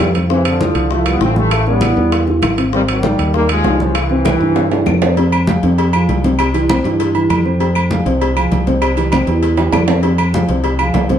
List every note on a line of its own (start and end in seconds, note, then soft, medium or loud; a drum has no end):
0.00 0.70 F2 medium
0.00 0.12 E3 medium
0.00 0.12 G3 medium
0.00 high bongo medium
0.00 low bongo medium
0.00 high timbale medium
0.00 low timbale medium
0.00 claves medium
0.15 0.27 C3 medium
0.15 0.27 C4 medium
0.15 0.28 C5 medium
0.15 high conga soft
0.15 high timbale medium
0.30 0.55 C3 medium
0.30 0.45 C3 medium
0.30 0.45 E3 medium
0.30 0.55 C4 medium
0.30 0.55 C5 medium
0.30 high bongo medium
0.30 high conga soft
0.45 0.92 D3 medium
0.45 0.92 F3 medium
0.45 high conga soft
0.45 high timbale medium
0.45 claves medium
0.61 0.86 F3 medium
0.61 0.86 E4 medium
0.61 0.86 F4 medium
0.61 high bongo medium
0.61 high conga medium
0.75 1.17 C2 medium
0.75 high conga soft
0.75 high timbale medium
0.91 1.16 F3 medium
0.91 1.07 F3 medium
0.91 1.07 A3 medium
0.91 1.16 E4 medium
0.91 1.16 F4 medium
0.91 high bongo medium
0.91 high conga soft
1.06 1.22 G3 medium
1.06 1.22 B3 medium
1.06 high conga soft
1.06 high timbale loud
1.06 claves medium
1.20 1.91 A1 medium
1.20 1.34 E3 medium
1.20 1.36 A3 medium
1.20 1.36 C4 medium
1.20 1.34 E4 medium
1.20 1.34 F4 medium
1.20 high bongo medium
1.20 low bongo medium
1.20 high conga medium
1.36 1.61 E3 medium
1.36 1.68 E3 medium
1.36 1.68 A3 medium
1.36 1.61 E4 medium
1.36 1.62 G4 medium
1.36 high conga medium
1.51 high bongo medium
1.51 high conga soft
1.51 high timbale medium
1.51 claves medium
1.67 1.79 C#3 medium
1.67 2.25 G3 medium
1.67 2.25 B3 medium
1.67 1.80 C#4 medium
1.67 1.80 C#5 medium
1.67 high bongo soft
1.67 high conga soft
1.81 1.95 E3 medium
1.81 1.95 E4 medium
1.81 1.95 G4 medium
1.81 high bongo medium
1.81 high conga loud
1.81 high timbale medium
1.81 claves medium
1.96 2.39 E2 medium
1.96 2.22 E3 medium
1.96 2.22 E4 medium
1.96 2.23 G4 medium
1.96 high bongo soft
1.96 high conga soft
2.12 high bongo medium
2.12 high conga soft
2.12 high timbale medium
2.27 2.53 E3 medium
2.27 2.53 E4 medium
2.27 2.53 G4 medium
2.27 high bongo soft
2.27 high conga soft
2.42 3.13 G#1 medium
2.42 high bongo medium
2.42 low bongo medium
2.42 high conga medium
2.42 high timbale loud
2.42 claves medium
2.58 2.70 C3 medium
2.58 2.70 C4 medium
2.58 2.71 C5 medium
2.58 high conga soft
2.58 high timbale medium
2.73 2.98 C3 medium
2.73 2.82 D#3 medium
2.73 2.82 G3 medium
2.73 2.98 C4 medium
2.73 2.98 C5 medium
2.73 high bongo medium
2.73 high conga soft
2.88 3.32 D#3 medium
2.88 3.32 G3 medium
2.88 high conga soft
2.88 high timbale medium
2.88 claves medium
3.03 3.29 D#3 medium
3.03 3.29 D#4 medium
3.03 3.29 G4 medium
3.03 high bongo medium
3.03 high conga loud
3.19 3.61 D#2 medium
3.19 high conga soft
3.19 high timbale medium
3.34 3.59 D#3 medium
3.34 3.49 G3 medium
3.34 3.49 A#3 loud
3.34 3.59 D#4 medium
3.34 3.60 G4 medium
3.34 high bongo medium
3.34 high conga soft
3.49 3.79 F3 medium
3.49 3.79 G#3 loud
3.49 high conga soft
3.49 high timbale loud
3.49 claves medium
3.64 4.35 C2 medium
3.64 3.77 D#3 medium
3.64 3.78 D#4 medium
3.64 3.77 G4 medium
3.64 high bongo medium
3.64 low bongo medium
3.64 high conga medium
3.64 low timbale medium
3.80 3.96 C#3 medium
3.80 4.05 E3 medium
3.80 3.96 F3 medium
3.80 4.05 E4 medium
3.80 4.05 G4 medium
3.80 high conga medium
3.95 4.99 C3 medium
3.95 4.99 E3 medium
3.95 high bongo medium
3.95 high conga soft
3.95 high timbale medium
3.95 claves medium
4.10 4.23 C3 medium
4.10 4.23 C4 medium
4.10 4.23 C5 medium
4.10 high bongo soft
4.10 high conga soft
4.25 4.38 E3 medium
4.25 4.38 E4 medium
4.25 4.39 G4 medium
4.25 high bongo medium
4.25 high conga loud
4.25 high timbale medium
4.25 claves medium
4.40 4.83 G2 medium
4.40 4.66 E3 medium
4.40 4.66 E4 medium
4.40 4.66 G4 medium
4.40 high bongo soft
4.40 high conga soft
4.56 high bongo medium
4.56 high conga soft
4.56 low timbale medium
4.71 4.96 E3 medium
4.71 4.96 E4 medium
4.71 4.96 G4 medium
4.71 high conga soft
4.71 low timbale medium
4.86 5.57 F2 medium
4.86 low bongo medium
4.86 high conga medium
4.86 low timbale medium
4.86 claves medium
5.02 5.14 C3 medium
5.02 5.14 C4 medium
5.02 5.15 C5 medium
5.02 low bongo medium
5.02 high conga soft
5.02 low timbale loud
5.17 5.42 C3 medium
5.17 5.42 C4 medium
5.17 5.42 C5 medium
5.17 cowbell loud
5.17 high conga soft
5.17 low agogo medium
5.32 high conga soft
5.32 low agogo loud
5.32 claves medium
5.47 5.60 F3 medium
5.47 5.60 F4 medium
5.47 5.61 G#4 medium
5.47 cowbell medium
5.47 high conga loud
5.63 6.05 F2 medium
5.63 5.88 C3 medium
5.63 5.88 C4 medium
5.63 5.88 C5 medium
5.63 cowbell medium
5.63 high conga soft
5.78 cowbell loud
5.78 high conga soft
5.78 low agogo medium
5.93 6.19 F3 medium
5.93 6.19 F4 medium
5.93 6.19 G#4 medium
5.93 high conga soft
5.93 low agogo loud
5.93 claves medium
6.09 6.79 C2 medium
6.09 cowbell medium
6.09 high conga medium
6.24 6.49 C3 medium
6.24 6.49 C4 medium
6.24 6.49 C5 medium
6.24 cowbell medium
6.24 high conga medium
6.39 cowbell loud
6.39 high conga soft
6.39 low agogo loud
6.39 claves medium
6.54 6.66 E3 medium
6.54 6.67 E4 medium
6.54 6.67 G4 medium
6.54 cowbell medium
6.54 high conga soft
6.54 low agogo medium
6.69 6.82 C3 medium
6.69 6.82 C4 medium
6.69 6.82 C5 medium
6.69 cowbell medium
6.69 high conga loud
6.69 low agogo loud
6.69 claves medium
6.84 7.27 G2 loud
6.84 7.10 E3 medium
6.84 7.10 E4 medium
6.84 7.10 G4 medium
6.84 cowbell medium
6.84 high conga soft
7.00 cowbell loud
7.00 high conga soft
7.00 low agogo medium
7.14 7.40 E3 medium
7.14 7.40 E4 medium
7.14 7.40 G4 medium
7.14 high conga soft
7.14 low agogo medium
7.30 8.00 F2 medium
7.30 cowbell medium
7.30 high conga medium
7.30 low agogo loud
7.30 claves medium
7.45 7.57 C3 medium
7.45 7.58 C4 medium
7.45 7.58 C5 medium
7.45 high conga soft
7.60 7.85 C3 medium
7.60 7.85 C4 medium
7.60 7.85 C5 medium
7.60 cowbell loud
7.60 high conga soft
7.60 low agogo medium
7.75 high conga soft
7.75 low agogo loud
7.75 claves medium
7.90 8.03 F3 medium
7.90 8.03 F4 medium
7.90 8.03 G#4 medium
7.90 cowbell medium
7.90 high conga medium
8.05 8.48 C2 medium
8.05 8.31 C3 medium
8.05 8.31 C4 medium
8.05 8.31 C5 medium
8.05 cowbell medium
8.05 high conga soft
8.21 cowbell loud
8.21 high conga soft
8.21 low agogo medium
8.35 8.61 F3 medium
8.35 8.61 F4 medium
8.35 8.61 G#4 medium
8.35 high conga soft
8.35 low agogo loud
8.35 claves medium
8.51 9.22 C2 medium
8.51 cowbell medium
8.51 high conga medium
8.67 8.92 C3 medium
8.67 8.92 C4 medium
8.67 8.92 C5 medium
8.67 cowbell medium
8.67 high conga medium
8.82 cowbell loud
8.82 high conga soft
8.82 low agogo loud
8.82 claves medium
8.97 9.09 E3 medium
8.97 9.10 E4 medium
8.97 9.10 G4 medium
8.97 cowbell medium
8.97 high conga soft
8.97 low agogo medium
9.12 9.25 C3 medium
9.12 9.25 C4 medium
9.12 9.25 C5 medium
9.12 cowbell medium
9.12 high conga loud
9.12 low agogo medium
9.12 claves medium
9.27 9.69 E2 medium
9.27 9.53 E3 medium
9.27 9.53 E4 medium
9.27 9.53 G4 medium
9.27 cowbell medium
9.27 high conga soft
9.43 cowbell loud
9.43 high conga soft
9.43 low agogo medium
9.57 9.83 E3 medium
9.57 9.83 E4 medium
9.57 9.83 G4 medium
9.57 high conga soft
9.57 high timbale medium
9.57 low agogo medium
9.72 10.43 F2 medium
9.72 cowbell medium
9.72 high conga medium
9.72 low timbale medium
9.72 low agogo loud
9.72 claves medium
9.88 10.01 C3 medium
9.88 10.01 C4 medium
9.88 10.01 C5 medium
9.88 high conga soft
9.88 low timbale loud
10.03 10.28 C3 medium
10.03 10.28 C4 medium
10.03 10.28 C5 medium
10.03 cowbell loud
10.03 high conga soft
10.03 low agogo medium
10.18 high conga soft
10.18 low agogo loud
10.18 claves medium
10.34 10.46 F3 medium
10.34 10.46 F4 medium
10.34 10.47 G#4 medium
10.34 cowbell medium
10.34 high conga loud
10.49 10.91 C2 medium
10.49 10.74 C3 medium
10.49 10.74 C4 medium
10.49 10.74 C5 medium
10.49 cowbell medium
10.49 high conga soft
10.64 cowbell loud
10.64 high conga soft
10.64 low agogo medium
10.79 11.04 F3 medium
10.79 11.04 F4 medium
10.79 11.04 G#4 medium
10.79 high conga soft
10.79 low agogo loud
10.79 claves medium
10.94 11.19 C2 medium
10.94 cowbell medium
10.94 high conga medium
10.94 low timbale medium
11.09 11.19 C3 medium
11.09 11.19 C4 medium
11.09 11.19 C5 medium
11.09 cowbell medium
11.09 high conga medium